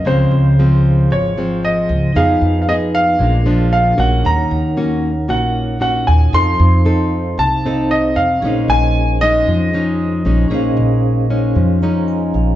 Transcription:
<<
  \new Staff \with { instrumentName = "Grand piano" } { \time 4/4 \key bes \minor \tempo 4 = 115 c''2 des''4 ees''4 | f''8.~ f''32 f''32 ees''8 f''4. f''8 ges''8 | bes''2 ges''4 ges''8 aes''8 | c'''2 a''4 ees''8 f''8~ |
f''8 aes''4 ees''2~ ees''8~ | ees''2. r4 | }
  \new Staff \with { instrumentName = "Vibraphone" } { \time 4/4 \key bes \minor << { r1 | r1 | r1 | r1 |
r1 | r2 r8 bes''8 aes''8 f''8 | } \\ { <aes' f'' c'''>1 | <ees' aes' ces'' f''>2 <d' aes' bes' f''>2 | <ees' bes' des'' ges''>1 | <ees' a' c'' f''>2~ <ees' a' c'' f''>8 <ees' a' c'' f''>4. |
<des' aes' c'' ees''>1 | <des' aes' c'' f''>1 | } >> }
  \new Staff \with { instrumentName = "Nylon-string guitar" } { \time 4/4 \key bes \minor << { <f aes c'>4 <f aes c'>4. <f aes c'>4. | <ces' ees' aes'>4 <ces' ees' aes'>4 <f aes d'>8 <f aes d'>4 <bes des' ges'>8~ | <bes des' ges'>4 <bes des' ges'>8 r8 <bes des' ges'>4 <bes des' ges'>4 | <c' ees' a'>8 r8 <c' ees' a'>4 r8 <c' ees' a'>4. |
<aes des' ees'>4. <aes des' ees'>4 <aes des' ees'>4 <aes des' ees'>8 | <aes des' ees'>4. <aes des' ees'>4 <aes des' ees'>4. | } \\ { des2 aes,2 | f2 bes,2 | ees2 bes,2 | f2 c2 |
bes,2 f2 | bes,2 f2 | } >> }
  \new Staff \with { instrumentName = "Upright bass" } { \clef bass \time 4/4 \key bes \minor des,8 des,4. aes,,4. des,8 | f,8 f,4. bes,,4. bes,,8 | ees,8 ees,4. bes,,4. ees,8 | f,8 f,4. c,4. f,8 |
bes,,8 bes,,4. f,4. bes,,8 | bes,,8 bes,,4. f,4. bes,,8 | }
>>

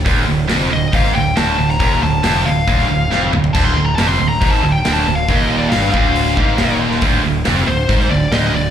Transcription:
<<
  \new Staff \with { instrumentName = "Lead electric guitar" } { \time 4/4 \key d \phrygian \tempo 4 = 138 r4. ees''8 f''8 g''8 a''8. bes''16~ | bes''8 a''4 f''2 r8 | a''16 c'''8 bes''16 a''16 c'''8 bes''8 a''8 g''8 a''8 f''16~ | f''16 ees''8 d''16 f''8 f''2 r8 |
r4. c''4 d''8 ees''8 d''8 | }
  \new Staff \with { instrumentName = "Distorted electric guitar" } { \clef bass \time 4/4 \key d \phrygian d,8 d,8 f,8 d,8 gis,8 d,8 d,8 d,8 | ees,8 d,8 f,8 d,8 d,8 d,8 f,8 d,8 | d,8 d,8 f,8 d,8 gis,8 d,8 d,8 d,8 | ees,4 g,8 d,4 gis,8 ees,4 |
d,8 d,8 f,8 d,8 gis,8 d,8 d,8 d,8 | }
  \new Staff \with { instrumentName = "Distorted electric guitar" } { \clef bass \time 4/4 \key d \phrygian d,8 d,8 f,8 d,8 gis,8 d,8 d,8 d,8 | ees,8 d,8 f,8 d,8 d,8 d,8 f,8 d,8 | d,8 d,8 f,8 d,8 gis,8 d,8 d,8 d,8 | ees,4 g,8 d,4 gis,8 ees,4 |
d,8 d,8 f,8 d,8 gis,8 d,8 d,8 d,8 | }
  \new Staff \with { instrumentName = "Distorted electric guitar" } { \clef bass \time 4/4 \key d \phrygian r1 | r1 | d,8 d,8 f,8 d,8 gis,8 d,8 d,8 d,8 | ees,4 g,8 d,4 gis,8 ees,4 |
d,8 d,8 f,8 d,8 gis,8 d,8 d,8 d,8 | }
  \new Staff \with { instrumentName = "Picked electric bass" } { \clef bass \time 4/4 \key d \phrygian d,,8 d,,8 f,,8 d,,8 gis,,8 d,,8 d,,8 d,,8 | ees,,8 d,,8 f,,8 d,,8 d,,8 d,,8 f,,8 d,,8 | d,,8 d,,8 f,,8 d,,8 gis,,8 d,,8 d,,8 d,,8 | ees,,4 g,,8 d,,4 gis,,8 ees,,4 |
d,,8 d,,8 f,,8 d,,8 gis,,8 d,,8 d,,8 d,,8 | }
  \new DrumStaff \with { instrumentName = "Drums" } \drummode { \time 4/4 <hho bd>4 <hho sn>4 <hho bd>16 sn8. <hho sn>8. sn16 | <hho bd>4 <hho sn>4 <hho bd>16 sn8. sn8 toml16 tomfh16 | <cymc bd>4 <hho sn>4 <hho bd>16 sn8. <hho sn>4 | <hho bd>4 <hho sn>8 bd8 hho16 sn16 bd8 <hho sn>8. sn16 |
<hho bd>4 <hho sn>4 <hho bd>16 sn8. <hho sn>4 | }
>>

